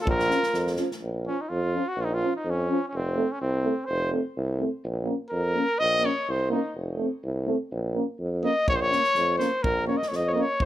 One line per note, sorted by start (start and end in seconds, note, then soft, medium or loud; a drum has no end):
0.01 0.32 A#1 loud
0.01 0.73 F4 medium
0.01 0.08 A4 medium
0.07 0.75 A#4 loud
0.07 kick loud
0.20 snare soft
0.30 0.41 F3 medium
0.30 0.40 C#4 medium
0.30 snare soft
0.43 snare soft
0.53 0.79 F2 medium
0.53 snare soft
0.67 snare soft
0.77 0.88 F3 medium
0.77 0.87 C#4 medium
0.77 snare soft
0.91 snare soft
1.01 1.27 A#1 medium
1.27 1.36 F3 medium
1.27 1.43 C#4 medium
1.27 1.36 C#4 soft
1.41 1.51 D#4 medium
1.49 1.77 F2 medium
1.49 1.90 F4 medium
1.75 1.84 F3 medium
1.75 1.84 C#4 medium
1.89 2.02 F#4 medium
1.96 2.23 A#1 medium
2.01 2.16 D#4 medium
2.01 2.06 F4 medium
2.14 2.35 F4 medium
2.23 2.32 F3 medium
2.23 2.32 C#4 soft
2.36 2.52 D#4 medium
2.44 2.71 F2 medium
2.50 2.88 C#4 medium
2.69 2.79 F3 medium
2.69 2.79 C#4 medium
2.89 2.98 C#4 medium
2.94 3.20 F1 medium
2.94 3.33 C4 medium
3.16 3.26 A3 medium
3.16 3.25 C4 medium
3.32 3.41 C#4 medium
3.42 3.68 C2 medium
3.42 3.87 C4 medium
3.64 3.73 A3 medium
3.64 3.74 C4 medium
3.86 4.15 F1 medium
3.86 4.11 C5 medium
4.11 4.21 A3 medium
4.11 4.22 C4 medium
4.37 4.63 C2 medium
4.59 4.68 A3 medium
4.59 4.70 C4 medium
4.84 5.10 A#1 medium
5.04 5.14 A#3 medium
5.04 5.17 C#4 medium
5.30 5.58 F2 medium
5.30 5.81 A#4 loud
5.55 5.64 A#3 medium
5.55 5.66 C#4 medium
5.79 6.07 A#1 loud
5.79 6.07 D#5 loud
5.99 6.10 A#3 medium
6.04 6.13 C#4 medium
6.04 6.32 C#5 loud
6.28 6.54 C2 medium
6.28 6.50 C5 medium
6.50 6.60 A#3 medium
6.50 6.62 C#4 medium
6.50 6.74 D#4 medium
6.75 7.01 F1 medium
6.97 7.07 A3 medium
6.97 7.10 C4 medium
7.24 7.51 C2 medium
7.46 7.56 A3 medium
7.46 7.57 C4 medium
7.71 7.98 A#1 medium
7.94 8.04 A#3 medium
7.94 8.06 C#4 medium
8.19 8.46 F2 medium
8.43 8.52 A#3 medium
8.43 8.53 C#4 medium
8.43 8.66 D#5 medium
8.68 8.95 A#1 loud
8.68 8.77 C#5 loud
8.68 kick loud
8.75 8.83 C5 medium
8.81 9.38 C#5 loud
8.90 9.03 A#3 soft
8.90 9.00 C#4 medium
8.90 snare soft
9.04 snare soft
9.15 9.43 F2 medium
9.15 snare soft
9.38 9.49 A#3 medium
9.38 9.49 C#4 medium
9.38 9.64 C5 medium
9.38 snare soft
9.63 9.91 A#1 medium
9.63 9.87 A#4 loud
9.63 kick loud
9.87 9.97 A#3 medium
9.87 9.98 C#4 medium
9.87 9.99 C#5 medium
9.97 10.10 D#5 medium
10.02 snare soft
10.08 10.38 F2 loud
10.08 10.17 C#5 medium
10.13 10.29 D#5 medium
10.13 snare soft
10.28 10.32 C#5 medium
10.28 10.41 D#5 medium
10.34 10.44 A#3 medium
10.34 10.46 C#4 medium
10.40 10.65 C#5 loud
10.60 10.65 F1 medium
10.60 kick medium